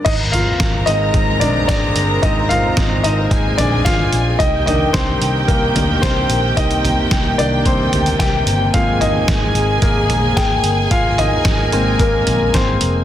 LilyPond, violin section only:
\new Staff \with { instrumentName = "Violin section" } { \time 4/4 \key aes \lydian \tempo 4 = 110 <bes' bes''>1~ | <bes' bes''>2 <aes' aes''>2 | <g' g''>1~ | <g' g''>1 |
<aes' aes''>1~ | <aes' aes''>1 | }